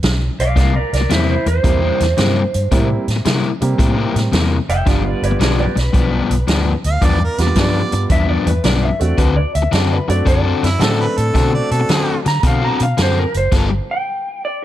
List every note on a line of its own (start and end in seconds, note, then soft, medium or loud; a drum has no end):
0.03 0.28 B1 medium
0.03 snare loud
0.03 closed hi-hat medium
0.39 0.57 B1 medium
0.39 0.56 D5 medium
0.39 0.57 F5 medium
0.39 closed hi-hat medium
0.56 0.82 C2 medium
0.56 0.74 C3 medium
0.56 0.74 G3 medium
0.56 0.73 A#3 medium
0.56 0.73 E4 medium
0.56 0.73 D5 medium
0.56 0.75 F5 medium
0.56 kick loud
0.56 snare soft
0.56 closed hi-hat medium
0.74 0.92 A#4 medium
0.74 0.93 D5 medium
0.74 muted overdriven electric guitar stroke soft
0.93 1.05 C2 medium
0.93 1.09 A#4 medium
0.93 1.12 D5 medium
0.93 snare soft
0.93 closed hi-hat medium
1.01 muted overdriven electric guitar stroke soft
1.10 1.36 E2 medium
1.10 1.33 C3 medium
1.10 1.34 G3 medium
1.10 1.34 A#3 medium
1.10 1.34 E4 medium
1.10 1.28 E4 medium
1.10 1.28 C5 medium
1.10 snare medium
1.10 closed hi-hat medium
1.29 1.45 E4 medium
1.29 1.46 C5 medium
1.46 1.58 E2 medium
1.46 3.04 C5 medium
1.46 muted overdriven electric guitar stroke soft
1.46 closed hi-hat medium
1.63 1.90 E2 medium
1.63 1.81 C3 medium
1.63 1.96 G3 medium
1.63 1.81 G3 medium
1.63 1.96 A#3 medium
1.63 1.81 A#3 medium
1.63 1.96 C4 medium
1.63 1.96 E4 medium
1.63 1.80 E4 medium
1.63 kick loud
1.63 closed hi-hat medium
1.81 2.03 C3 medium
1.81 2.03 G3 medium
1.81 2.03 A#3 medium
1.81 2.02 E4 medium
2.00 2.13 E2 medium
2.00 snare soft
2.00 closed hi-hat medium
2.17 2.43 G2 medium
2.17 2.41 C3 medium
2.17 2.41 G3 medium
2.17 2.41 A#3 medium
2.17 2.41 E4 medium
2.17 snare medium
2.17 closed hi-hat medium
2.54 2.67 G2 medium
2.54 closed hi-hat medium
2.71 2.97 A2 medium
2.71 2.89 C3 medium
2.71 3.04 G3 medium
2.71 2.89 G3 medium
2.71 3.04 A#3 medium
2.71 2.89 A#3 medium
2.71 3.04 C4 medium
2.71 3.04 E4 medium
2.71 2.88 E4 medium
2.71 kick medium
2.71 closed hi-hat medium
2.89 muted overdriven electric guitar stroke soft
3.08 3.20 A2 medium
3.08 snare soft
3.08 closed hi-hat medium
3.16 muted overdriven electric guitar stroke soft
3.25 3.49 C3 medium
3.25 3.51 C3 medium
3.25 3.49 G3 medium
3.25 3.49 A#3 medium
3.25 3.49 E4 medium
3.25 snare medium
3.25 closed hi-hat medium
3.61 3.74 C3 medium
3.61 4.29 G3 medium
3.61 4.29 A#3 medium
3.61 4.29 C4 medium
3.61 4.30 G4 medium
3.61 muted overdriven electric guitar stroke soft
3.61 closed hi-hat medium
3.78 4.05 A2 medium
3.78 3.97 C3 medium
3.78 3.96 G3 medium
3.78 3.96 A#3 medium
3.78 3.95 E4 medium
3.78 kick loud
3.78 closed hi-hat medium
3.96 4.18 C3 medium
3.96 4.18 G3 medium
3.96 4.18 A#3 medium
3.96 4.17 E4 medium
4.15 4.27 A2 medium
4.15 snare soft
4.15 closed hi-hat medium
4.32 4.58 E2 medium
4.32 4.56 C3 medium
4.32 4.56 G3 medium
4.32 4.56 A#3 medium
4.32 4.56 E4 medium
4.32 snare loud
4.32 closed hi-hat medium
4.69 4.81 F1 medium
4.69 4.88 E5 medium
4.69 4.88 G5 medium
4.69 closed hi-hat medium
4.86 5.12 G1 medium
4.86 5.04 G2 medium
4.86 5.04 F3 medium
4.86 5.69 G3 medium
4.86 5.69 B3 medium
4.86 5.03 B3 medium
4.86 5.70 D4 medium
4.86 5.03 D4 medium
4.86 5.70 F4 medium
4.86 5.06 D5 medium
4.86 5.07 F5 medium
4.86 kick medium
4.86 snare soft
4.86 closed hi-hat medium
5.04 5.23 B4 medium
5.04 5.23 D5 medium
5.04 muted overdriven electric guitar stroke soft
5.22 5.35 G1 medium
5.22 5.40 B4 medium
5.22 5.40 D5 medium
5.22 closed hi-hat medium
5.31 muted overdriven electric guitar stroke soft
5.40 5.65 B1 medium
5.40 5.63 G2 medium
5.40 5.64 F3 medium
5.40 5.64 B3 medium
5.40 5.64 D4 medium
5.40 5.57 B4 medium
5.40 5.58 D5 medium
5.40 snare loud
5.40 closed hi-hat medium
5.59 5.75 B4 medium
5.59 5.78 D5 medium
5.76 5.89 B1 medium
5.76 7.35 B4 medium
5.76 muted overdriven electric guitar stroke soft
5.76 snare soft
5.76 closed hi-hat soft
5.93 6.20 B1 medium
5.93 6.11 G2 medium
5.93 6.11 F3 medium
5.93 6.10 B3 medium
5.93 6.10 D4 loud
5.93 kick loud
5.93 closed hi-hat medium
6.11 6.33 G2 medium
6.11 6.33 F3 medium
6.11 6.33 B3 medium
6.11 6.32 D4 medium
6.30 6.42 B1 medium
6.30 closed hi-hat medium
6.47 6.73 D2 medium
6.47 6.71 G2 medium
6.47 6.71 F3 medium
6.47 6.72 B3 medium
6.47 6.72 D4 medium
6.47 snare loud
6.47 closed hi-hat medium
6.84 6.97 D2 medium
6.84 7.07 F5 medium
6.84 closed hi-hat medium
7.01 7.27 E2 medium
7.01 7.20 G2 medium
7.01 7.19 F3 medium
7.01 7.19 B3 medium
7.01 7.18 D4 medium
7.01 7.21 D5 medium
7.01 kick medium
7.01 closed hi-hat medium
7.19 muted overdriven electric guitar stroke soft
7.24 7.44 A#4 medium
7.38 7.51 E2 medium
7.38 8.06 G3 medium
7.38 8.06 B3 medium
7.38 8.07 D4 soft
7.38 8.07 F4 medium
7.38 snare soft
7.38 closed hi-hat medium
7.42 7.58 D5 medium
7.47 muted overdriven electric guitar stroke soft
7.55 7.81 G2 medium
7.55 7.80 G2 medium
7.55 7.80 F3 medium
7.55 7.80 B3 medium
7.55 7.80 D4 medium
7.55 kick medium
7.55 snare loud
7.55 closed hi-hat medium
7.60 8.02 D5 medium
7.92 8.05 G2 medium
7.92 muted overdriven electric guitar stroke soft
7.92 closed hi-hat medium
8.10 8.36 E2 medium
8.10 8.28 G2 medium
8.10 8.28 F3 medium
8.10 8.28 B3 medium
8.10 8.27 D4 medium
8.10 8.28 E5 medium
8.10 kick loud
8.10 closed hi-hat medium
8.28 8.50 G2 medium
8.28 8.49 F3 medium
8.28 8.49 B3 medium
8.28 8.49 D4 medium
8.28 8.46 D5 medium
8.46 8.59 E2 medium
8.46 8.64 B4 medium
8.46 closed hi-hat medium
8.64 8.89 B1 medium
8.64 8.88 G2 medium
8.64 8.88 F3 medium
8.64 8.88 B3 medium
8.64 8.88 D4 medium
8.64 8.83 D5 medium
8.64 snare medium
8.64 closed hi-hat medium
8.83 9.00 E5 medium
8.99 9.13 E2 medium
8.99 9.16 A3 medium
8.99 9.16 C4 medium
8.99 9.16 D4 medium
8.99 9.17 F#4 medium
8.99 9.18 D5 medium
8.99 closed hi-hat medium
9.18 9.44 D2 medium
9.18 9.36 D3 medium
9.18 9.35 C4 medium
9.18 9.35 F#4 medium
9.18 9.35 A4 medium
9.18 9.36 B4 medium
9.18 kick medium
9.18 closed hi-hat medium
9.36 9.54 D5 medium
9.36 muted overdriven electric guitar stroke soft
9.55 9.67 D2 medium
9.55 9.72 E5 medium
9.55 closed hi-hat medium
9.62 muted overdriven electric guitar stroke soft
9.71 9.98 F#2 medium
9.71 9.96 D3 medium
9.71 9.96 C4 medium
9.71 9.96 F#4 medium
9.71 9.96 A4 medium
9.71 9.93 D5 medium
9.71 snare medium
9.71 closed hi-hat medium
9.93 10.09 B4 medium
10.08 10.21 F#2 medium
10.08 10.24 A3 medium
10.08 10.24 C4 medium
10.08 10.24 D4 medium
10.08 10.25 F#4 medium
10.08 10.26 D5 medium
10.08 muted overdriven electric guitar stroke soft
10.08 closed hi-hat medium
10.25 10.52 F#2 medium
10.25 10.44 D3 medium
10.25 10.43 C4 medium
10.25 10.43 F#4 medium
10.25 10.42 A4 medium
10.25 10.62 D5 medium
10.25 kick loud
10.25 closed hi-hat medium
10.44 10.66 D3 medium
10.44 10.65 C4 medium
10.44 10.65 F#4 medium
10.44 10.65 A4 medium
10.63 10.75 F#2 medium
10.63 10.84 E4 medium
10.63 snare soft
10.63 closed hi-hat medium
10.79 11.06 A2 medium
10.79 11.04 D3 medium
10.79 11.32 A3 medium
10.79 11.33 C4 medium
10.79 11.04 C4 medium
10.79 11.33 D4 medium
10.79 11.04 F#4 medium
10.79 11.04 A4 medium
10.79 11.64 A4 medium
10.79 10.99 A4 medium
10.79 snare loud
10.79 closed hi-hat medium
11.01 11.19 B4 medium
11.17 11.30 A2 medium
11.17 11.52 A4 medium
11.17 closed hi-hat medium
11.34 11.61 B2 medium
11.34 11.53 D3 medium
11.34 12.18 A3 medium
11.34 12.18 C4 medium
11.34 11.53 C4 medium
11.34 12.18 D4 medium
11.34 11.52 F#4 medium
11.34 12.19 F#4 medium
11.34 11.52 A4 medium
11.34 kick medium
11.34 snare soft
11.34 closed hi-hat medium
11.53 11.71 D5 medium
11.53 muted overdriven electric guitar stroke soft
11.71 11.84 B2 medium
11.71 12.18 A4 medium
11.71 closed hi-hat medium
11.80 muted overdriven electric guitar stroke soft
11.89 12.13 D3 medium
11.89 12.15 D3 medium
11.89 12.13 C4 medium
11.89 12.13 F#4 medium
11.89 12.14 A4 loud
11.89 snare loud
11.89 closed hi-hat medium
12.26 12.38 D3 medium
12.26 12.44 A#5 medium
12.26 muted overdriven electric guitar stroke soft
12.26 snare soft
12.26 closed hi-hat medium
12.43 12.69 B2 medium
12.43 12.62 D3 medium
12.43 12.62 C4 medium
12.43 12.61 F#4 medium
12.43 12.61 A4 medium
12.43 12.63 F5 medium
12.43 kick loud
12.43 closed hi-hat medium
12.62 12.83 D3 medium
12.62 12.83 C4 medium
12.62 12.83 F#4 medium
12.62 12.83 A4 medium
12.62 12.81 A#5 medium
12.80 12.93 B2 medium
12.80 12.99 F5 medium
12.80 closed hi-hat medium
12.97 13.24 F#2 medium
12.97 13.21 D3 medium
12.97 13.22 C4 medium
12.97 13.22 F#4 medium
12.97 13.22 A4 medium
12.97 snare loud
12.97 closed hi-hat medium
13.02 13.18 C5 medium
13.19 13.35 A#4 medium
13.34 13.47 F#1 medium
13.34 13.53 C5 medium
13.34 closed hi-hat medium
13.52 13.78 G1 medium
13.52 13.70 G3 medium
13.52 13.70 B3 medium
13.52 13.69 F4 medium
13.52 13.69 A4 medium
13.52 kick medium
13.52 snare soft
13.52 closed hi-hat medium
13.52 crash medium
13.70 muted overdriven electric guitar stroke soft
13.91 14.43 G5 medium
14.45 14.61 D5 medium